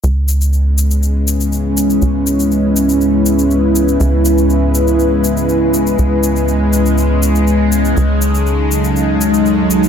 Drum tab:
SH |x-xxx-xxx-xxx-xx|x-xxx-xxx-xxx-xx|x-xxx-xxx-xxx-xx|x-xxx-xxx-xxx-xx|

SH |x-xxx-xxx-xxx-xx|